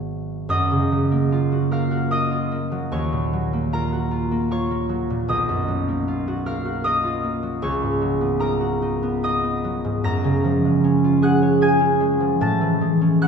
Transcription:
0.00 0.53 G#1 medium
0.00 0.50 G#2 medium
0.00 0.91 F#3 soft
0.00 0.52 G#3 soft
0.00 0.53 B3 soft
0.00 1.51 F#4 medium
0.00 0.54 G#4 medium
0.00 2.66 C#5 medium
0.49 2.95 F#2 medium
0.49 2.11 D#5 medium
0.49 2.10 D#6 medium
0.71 2.96 C#3 soft
0.92 2.70 F#3 soft
1.12 2.51 A#3 soft
1.32 2.30 F4 soft
1.52 1.90 F#4 soft
1.71 2.10 A#4 medium
1.71 5.63 F5 medium
1.71 5.62 F6 medium
1.91 3.91 F#4 soft
2.11 3.73 A#4 medium
2.11 5.29 D#5 medium
2.11 3.48 D#6 medium
2.31 3.72 F4 soft
2.52 3.52 A#3 soft
2.72 3.32 F#3 soft
2.92 5.31 D#2 medium
2.92 4.51 C#5 medium
2.92 4.50 C#6 medium
3.12 5.09 A#2 soft
3.33 4.88 F#3 soft
3.53 4.30 A#3 soft
3.73 4.10 F4 soft
3.73 6.45 A#4 medium
3.73 7.63 A#5 medium
3.92 6.26 F#4 soft
4.11 4.50 F4 soft
4.31 4.69 A#3 soft
4.51 6.07 F4 soft
4.51 5.33 C#5 medium
4.51 5.32 C#6 medium
4.71 5.87 A#3 soft
4.89 5.67 F#3 soft
5.10 5.32 A#2 soft
5.28 7.64 B1 medium
5.28 6.85 D#5 medium
5.28 6.83 D#6 medium
5.49 7.64 F#2 soft
5.68 7.42 F#3 soft
5.88 7.22 A#3 soft
6.08 7.03 F4 soft
6.28 6.64 F#4 soft
6.46 6.83 A#4 medium
6.46 7.65 F5 medium
6.46 7.64 F6 medium
6.65 8.59 F#4 soft
6.84 7.64 A#4 medium
6.84 9.23 D#5 medium
6.84 9.22 D#6 medium
7.04 7.64 F4 soft
7.23 7.64 A#3 soft
7.43 8.00 F#3 soft
7.62 10.08 C#2 medium
7.62 11.41 C#5 medium
7.62 11.53 C#6 medium
7.82 9.83 G#2 soft
8.01 9.63 F#3 soft
8.21 9.01 B3 soft
8.39 8.81 D#4 soft
8.39 12.31 A#4 medium
8.39 10.04 A#5 medium
8.61 12.45 F#4 soft
8.82 9.22 D#4 soft
9.03 9.42 B3 soft
9.23 10.08 D#4 soft
9.23 10.09 D#5 medium
9.23 10.09 D#6 medium
9.43 10.08 B3 soft
9.64 12.45 F#3 soft
9.85 10.08 G#2 soft
10.04 12.44 F#2 medium
10.04 12.45 A#5 medium
10.04 12.44 A#6 medium
10.24 12.44 C#3 soft
10.44 12.19 F3 soft
10.65 11.99 G#3 soft
10.84 11.79 C#4 soft
11.04 12.44 F4 soft
11.22 11.60 G#4 soft
11.22 12.45 F#5 medium
11.22 12.44 F#6 medium
11.42 13.28 C#5 soft
11.61 13.28 G#4 medium
11.61 13.28 G#5 medium
11.61 13.28 G#6 medium
11.80 13.00 C#4 soft
12.00 12.80 G#3 soft
12.20 12.44 F3 soft
12.41 13.28 A2 medium
12.41 13.28 A5 medium
12.41 13.28 A6 medium
12.61 13.28 E3 soft
12.81 13.28 G#3 soft
13.01 13.28 C#4 soft
13.21 13.28 E4 medium
13.21 13.28 F#5 medium
13.21 13.28 F#6 medium

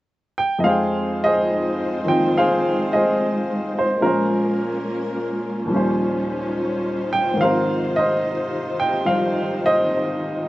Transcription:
0.38 0.57 G5 medium
0.59 3.99 F2 soft
0.59 2.03 F3 soft
0.59 3.97 C4 medium
0.59 3.97 F4 medium
0.59 3.97 C5 medium
0.59 0.63 D#5 medium
0.63 5.65 G#3 medium
0.63 4.01 G#3 soft
0.63 3.98 D#4 soft
0.63 4.03 D#4 soft
0.63 1.23 G#4 medium
0.63 1.24 C5 medium
0.63 1.23 F5 medium
0.69 2.07 G5 soft
1.24 2.37 G#4 soft
1.24 2.37 C5 medium
1.24 2.09 D#5 medium
2.04 4.02 D#3 soft
2.04 4.01 F3 soft
2.04 4.02 C4 soft
2.04 4.03 F4 soft
2.08 2.31 G5 medium
2.38 2.92 G#4 medium
2.38 2.93 C5 medium
2.38 2.95 F5 medium
2.93 3.98 G#4 medium
2.93 3.77 C5 soft
2.93 3.78 D#5 medium
3.79 4.03 C5 medium
4.01 5.66 A#2 soft
4.01 5.69 F3 soft
4.01 5.71 G#3 soft
4.01 5.68 A#3 medium
4.01 5.68 C#4 medium
4.01 5.66 C#4 soft
4.01 10.48 F4 medium
4.01 5.67 F4 soft
4.01 5.68 A#4 medium
4.01 5.66 A#4 medium
4.06 5.72 C5 soft
5.65 7.35 D#2 soft
5.65 7.36 A#2 soft
5.70 7.38 F3 soft
5.70 7.36 G3 medium
5.70 7.38 G3 soft
5.70 7.36 C#4 medium
5.70 7.39 C#4 soft
5.70 10.48 D#4 medium
5.70 10.48 C5 medium
5.76 7.41 C5 medium
7.13 7.36 G5 medium
7.34 10.48 G#2 soft
7.34 10.48 D#3 soft
7.34 10.48 D#3 medium
7.39 10.48 C3 medium
7.39 9.04 F3 soft
7.39 10.48 C4 soft
7.39 7.98 C5 soft
7.39 7.99 F5 medium
7.44 10.48 A#4 soft
7.96 9.07 C5 medium
7.96 8.82 D#5 medium
8.80 9.04 G5 medium
9.05 10.48 F3 soft
9.05 10.48 G3 soft
9.05 10.48 D#4 soft
9.05 9.65 C5 soft
9.05 9.60 F5 medium
9.66 10.48 C5 soft
9.66 10.48 D#5 medium

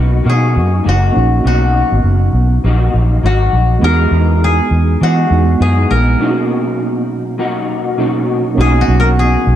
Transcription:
0.00 0.20 B1 medium
0.00 0.24 A#3 soft
0.00 1.11 B3 medium
0.00 1.11 C#4 medium
0.00 0.25 D#4 soft
0.00 1.12 D#4 medium
0.00 0.25 F#4 soft
0.00 0.60 F#4 medium
0.00 1.13 F#4 medium
0.00 1.17 B4 medium
0.24 0.58 B2 loud
0.24 0.83 F#3 medium
0.24 0.83 A#3 medium
0.24 0.85 D#4 medium
0.24 0.85 F#4 medium
0.30 2.27 G#4 medium
0.56 0.80 F#2 medium
0.84 1.10 F#1 medium
0.84 1.44 F#3 soft
0.84 1.44 A#3 medium
0.84 1.46 D#4 soft
0.84 1.45 F#4 medium
0.89 1.47 F#4 medium
1.12 3.48 A#3 medium
1.12 3.48 C#4 medium
1.12 3.49 D#4 medium
1.16 1.40 A#1 medium
1.16 3.50 F#4 medium
1.44 1.82 B1 medium
1.44 2.64 B2 medium
1.44 2.63 F#3 medium
1.44 2.63 A#3 medium
1.44 2.65 D#4 medium
1.44 3.25 F#4 medium
1.44 2.65 F#4 medium
1.92 2.02 G#1 medium
2.04 2.28 F#1 medium
2.33 2.57 B1 medium
2.64 2.88 A#1 medium
2.64 3.22 F#3 medium
2.64 3.23 A#3 medium
2.64 3.25 D#4 medium
2.64 3.24 F#4 medium
2.94 3.18 A#1 medium
3.23 3.47 G#1 medium
3.23 3.81 F#3 medium
3.23 3.82 A#3 soft
3.23 3.83 D#4 medium
3.23 3.84 F#4 medium
3.23 5.03 F#4 medium
3.53 3.77 A#1 medium
3.79 4.06 E2 loud
3.79 5.00 E3 medium
3.79 5.26 G#3 medium
3.79 5.27 B3 medium
3.79 5.02 B3 medium
3.79 5.28 D#4 medium
3.84 5.03 D#4 medium
3.84 5.29 F#4 medium
3.84 5.02 G#4 medium
3.84 5.68 A#4 loud
4.11 4.59 E2 medium
4.44 5.62 G#4 medium
4.71 4.95 E2 medium
5.01 5.59 E3 medium
5.01 5.25 E3 loud
5.01 5.61 B3 medium
5.01 5.61 D#4 medium
5.01 7.14 F#4 medium
5.01 5.61 G#4 medium
5.30 5.55 E2 medium
5.30 6.20 G#3 soft
5.30 6.21 B3 soft
5.30 6.21 D#4 soft
5.30 6.21 F#4 soft
5.60 5.85 F#2 medium
5.60 6.19 E3 medium
5.60 6.20 B3 medium
5.60 6.21 D#4 medium
5.60 7.59 G#4 medium
5.60 6.21 G#4 medium
5.91 6.15 A#1 medium
5.91 7.95 A#4 medium
6.19 7.38 B2 medium
6.19 7.95 B2 medium
6.19 7.38 F#3 medium
6.19 7.95 A#3 medium
6.19 7.38 A#3 medium
6.19 7.96 C#4 medium
6.19 7.39 D#4 medium
6.19 7.96 D#4 medium
6.19 7.40 F#4 medium
6.24 6.29 E4 medium
6.31 7.98 F#4 medium
7.38 7.98 F#3 medium
7.38 7.99 A#3 medium
7.38 8.00 D#4 medium
7.38 8.00 F#4 medium
7.97 8.57 B2 medium
7.97 8.57 F#3 medium
7.97 8.54 A#3 medium
7.97 8.58 A#3 medium
7.97 8.55 C#4 soft
7.97 8.56 D#4 medium
7.97 8.59 D#4 medium
7.97 8.59 F#4 medium
7.97 8.60 F#4 medium
8.55 8.82 B1 loud
8.55 9.56 B2 medium
8.55 9.56 F#3 medium
8.55 9.56 A#3 medium
8.55 9.56 C#4 medium
8.55 9.56 D#4 medium
8.59 9.56 A#3 medium
8.59 9.56 D#4 medium
8.59 9.56 F#4 medium
8.59 9.19 G#4 medium
8.81 9.56 F#4 medium
8.88 9.36 B1 medium
9.00 9.06 A#4 medium
9.19 9.56 G#4 medium
9.47 9.56 B1 medium

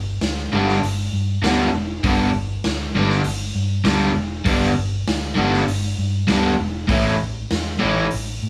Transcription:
0.00 0.17 G1 medium
0.21 0.47 D2 medium
0.21 snare loud
0.21 open hi-hat medium
0.52 0.77 G1 medium
0.52 0.76 G2 medium
0.52 0.77 D3 medium
0.52 0.77 G3 medium
0.52 0.77 B3 medium
0.52 0.78 D4 medium
0.68 snare soft
0.82 1.08 G1 medium
0.82 open hi-hat medium
1.13 1.38 G2 medium
1.42 1.68 D2 medium
1.42 1.67 G2 medium
1.42 1.68 D3 medium
1.42 1.68 G3 medium
1.42 1.68 B3 medium
1.42 1.69 D4 medium
1.42 snare loud
1.42 open hi-hat medium
1.73 1.99 E1 medium
2.04 2.29 G1 medium
2.04 2.28 G2 medium
2.04 2.28 D3 medium
2.04 2.29 G3 medium
2.04 2.29 B3 medium
2.04 kick loud
2.04 open hi-hat medium
2.08 2.30 D4 loud
2.34 2.60 G1 medium
2.64 2.91 D2 medium
2.64 snare loud
2.64 open hi-hat medium
2.95 3.20 G1 medium
2.95 3.19 G2 medium
2.95 3.19 D3 medium
2.95 3.20 G3 medium
2.95 3.20 B3 medium
2.95 3.21 D4 medium
3.10 snare soft
3.24 3.51 G1 medium
3.24 open hi-hat medium
3.55 3.80 G2 medium
3.84 4.11 D2 medium
3.84 4.09 G2 medium
3.84 4.10 D3 medium
3.84 4.10 G3 medium
3.84 4.10 B3 medium
3.84 4.11 D4 medium
3.84 snare loud
3.84 open hi-hat medium
4.15 4.41 E1 medium
4.45 4.71 G1 medium
4.45 4.70 G2 loud
4.45 4.70 D3 loud
4.45 4.71 G3 medium
4.45 4.71 B3 loud
4.45 4.71 D4 loud
4.45 kick loud
4.45 open hi-hat medium
4.77 5.03 G1 medium
5.07 5.33 D2 medium
5.07 snare loud
5.07 open hi-hat medium
5.35 5.63 G1 medium
5.35 5.61 G2 medium
5.35 5.62 D3 medium
5.35 5.62 G3 medium
5.35 5.62 B3 loud
5.35 5.63 D4 medium
5.53 snare soft
5.68 5.93 G1 medium
5.68 open hi-hat medium
5.99 6.24 G2 medium
6.27 6.55 D2 medium
6.27 6.52 G2 medium
6.27 6.53 D3 medium
6.27 6.53 G3 medium
6.27 6.54 B3 medium
6.27 6.54 D4 loud
6.27 snare loud
6.27 open hi-hat medium
6.60 6.85 E1 medium
6.88 7.15 A1 medium
6.88 7.13 A2 loud
6.88 7.14 E3 loud
6.88 7.14 A3 loud
6.88 7.14 C#4 medium
6.88 7.15 E4 loud
6.88 kick loud
6.88 open hi-hat medium
7.22 7.46 A1 medium
7.50 7.77 E2 medium
7.50 snare loud
7.50 open hi-hat soft
7.79 8.04 A2 medium
7.79 8.04 E3 medium
7.79 8.05 A3 loud
7.79 8.05 C#4 loud
7.79 8.05 E4 loud
7.83 8.08 A1 medium
8.11 8.38 A1 medium
8.11 open hi-hat medium
8.43 8.49 A2 medium

